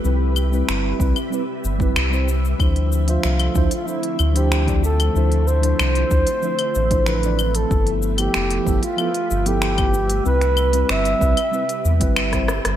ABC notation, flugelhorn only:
X:1
M:4/4
L:1/16
Q:1/4=94
K:Ddor
V:1 name="Flugelhorn"
z16 | z3 F4 F E3 G3 A2- | A2 c8- c2 B3 A- | A z2 G4 F4 G4- G |
B4 e8- e2 z2 |]